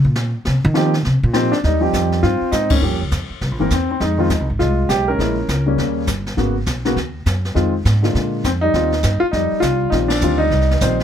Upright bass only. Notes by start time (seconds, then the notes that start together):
0.05 A#2
0.47 C3
0.65 D#3
1.06 C3
1.23 A#2
1.64 D#2
1.93 F2
2.23 G2
2.41 muted upright bass stroke
2.52 G#2
2.82 G2
2.92 F2
3.02 C#2
3.12 F2
3.30 muted upright bass stroke
3.41 C2
3.51 A#1
3.61 G1
3.71 E2
4.00 F2
4.30 D#2
4.40 C2
4.50 G#1
4.60 C2
4.89 B1
5.19 A#1
5.48 C#2
5.78 D#2
6.07 G1
6.37 G#1
6.67 B1
6.96 D#2
7.26 F#2
7.56 F2
7.85 G#2
8.15 A#2
8.44 F2
8.74 D#2
9.04 G2
9.22 muted upright bass stroke
9.33 F2
9.52 muted upright bass stroke
9.62 C2
9.92 A#1
10.22 D2
10.51 C2
10.81 A#1